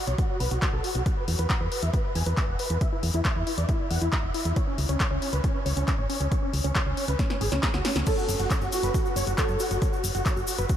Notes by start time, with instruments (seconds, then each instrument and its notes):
0.07 fm bass B1, supersaw synth C#5, closed hi-hat
0.18 supersaw synth F#4, kick, closed hi-hat
0.29 supersaw synth F#4
0.40 fm bass B1, supersaw synth B4, open hi-hat
0.51 fm bass B1, supersaw synth F#4, closed hi-hat
0.62 supersaw synth F#4, kick, clap, closed hi-hat
0.73 fm bass B1, supersaw synth A4
0.84 supersaw synth F#4, open hi-hat
0.95 fm bass B1, supersaw synth F#4, closed hi-hat
1.06 supersaw synth F#5, kick, closed hi-hat
1.17 supersaw synth B4
1.28 fm bass E2, open hi-hat
1.39 fm bass E2, supersaw synth B4, closed hi-hat
1.50 supersaw synth F#5, kick, clap, closed hi-hat
1.61 fm bass E2, supersaw synth B4
1.72 supersaw synth B4, open hi-hat
1.82 fm bass E2, supersaw synth E5, closed hi-hat
1.93 supersaw synth B4, kick, closed hi-hat
2.04 supersaw synth B4
2.15 fm bass E2, supersaw synth G#5, open hi-hat
2.26 fm bass E2, supersaw synth B4, closed hi-hat
2.37 supersaw synth B4, kick, clap, closed hi-hat
2.48 fm bass E1, supersaw synth F#5
2.59 supersaw synth B4, open hi-hat
2.70 fm bass E2, supersaw synth B4, closed hi-hat
2.81 supersaw synth E5, kick, closed hi-hat
2.92 supersaw synth E4
3.03 fm bass E2, open hi-hat
3.14 fm bass E2, supersaw synth E4, closed hi-hat
3.25 supersaw synth E5, kick, clap, closed hi-hat
3.36 fm bass E2, supersaw synth E4
3.47 supersaw synth E4, open hi-hat
3.58 fm bass E2, supersaw synth D5, closed hi-hat
3.69 supersaw synth E4, kick, closed hi-hat
3.80 supersaw synth E4
3.90 fm bass E2, supersaw synth F#5, open hi-hat
4.01 fm bass E2, supersaw synth E4, closed hi-hat
4.12 supersaw synth E4, kick, clap, closed hi-hat
4.23 fm bass E1, supersaw synth E5
4.34 supersaw synth E4, open hi-hat
4.45 fm bass E2, supersaw synth E4, closed hi-hat
4.56 supersaw synth C#5, kick, closed hi-hat
4.67 supersaw synth C#4
4.78 fm bass C#2, open hi-hat
4.89 fm bass C#2, supersaw synth C#4, closed hi-hat
5.00 supersaw synth C#5, kick, clap, closed hi-hat
5.11 fm bass C#2, supersaw synth C#4
5.22 supersaw synth C#4, open hi-hat
5.33 fm bass C#2, supersaw synth B4, closed hi-hat
5.44 supersaw synth C#4, kick, closed hi-hat
5.55 supersaw synth C#4
5.65 fm bass C#2, supersaw synth C#5, open hi-hat
5.77 fm bass C#2, supersaw synth C#4, closed hi-hat
5.88 supersaw synth C#4, kick, clap, closed hi-hat
5.98 fm bass G#1, supersaw synth C#5
6.09 supersaw synth C#4, open hi-hat
6.20 fm bass C#2, supersaw synth C#4, closed hi-hat
6.31 supersaw synth C#5, kick, closed hi-hat
6.42 supersaw synth C#4
6.53 fm bass C#2, open hi-hat
6.64 fm bass C#2, supersaw synth C#4, closed hi-hat
6.75 supersaw synth C#5, kick, clap, closed hi-hat
6.86 fm bass C#2, supersaw synth C#4
6.97 supersaw synth C#4, open hi-hat
7.08 fm bass C#2, supersaw synth B4, closed hi-hat
7.19 supersaw synth C#4, kick, snare, closed hi-hat
7.30 supersaw synth C#4, snare
7.41 fm bass G#1, supersaw synth G#4, open hi-hat
7.52 fm bass C#2, supersaw synth C#4, snare, closed hi-hat
7.63 supersaw synth C#4, kick, snare, clap, closed hi-hat
7.74 fm bass C#2, supersaw synth F#4, snare
7.85 supersaw synth C#4, snare, open hi-hat
7.96 fm bass C#2, supersaw synth C#4, snare, closed hi-hat
8.06 felt piano A4, supersaw synth C#5, kick, closed hi-hat, crash, shaker
8.18 supersaw synth F#4, shaker
8.29 fm bass F#1, open hi-hat, shaker
8.39 fm bass F#1, supersaw synth F#4, closed hi-hat, shaker
8.50 supersaw synth C#5, kick, clap, closed hi-hat, shaker
8.61 fm bass F#1, supersaw synth F#4, shaker
8.72 supersaw synth F#4, felt piano F#4, open hi-hat, shaker
8.83 fm bass F#1, supersaw synth B4, closed hi-hat, shaker
8.94 supersaw synth F#4, kick, closed hi-hat, shaker
9.05 supersaw synth F#4, shaker
9.16 fm bass F#1, supersaw synth C#5, open hi-hat, shaker
9.27 fm bass F#1, supersaw synth F#4, closed hi-hat, shaker
9.38 supersaw synth F#4, felt piano A4, kick, clap, closed hi-hat, shaker
9.48 fm bass F#2, supersaw synth C#5, shaker
9.60 supersaw synth F#4, open hi-hat, shaker
9.71 fm bass F#1, supersaw synth F#4, closed hi-hat, shaker
9.82 supersaw synth C#5, kick, closed hi-hat, shaker
9.93 supersaw synth F#4, shaker
10.04 fm bass F#1, open hi-hat, shaker
10.15 fm bass F#1, supersaw synth F#4, closed hi-hat, shaker
10.25 supersaw synth C#5, kick, clap, closed hi-hat, shaker
10.36 fm bass F#1, supersaw synth F#4, shaker
10.47 supersaw synth F#4, open hi-hat, shaker
10.58 fm bass F#1, supersaw synth B4, closed hi-hat, shaker
10.69 supersaw synth F#4, kick, closed hi-hat, shaker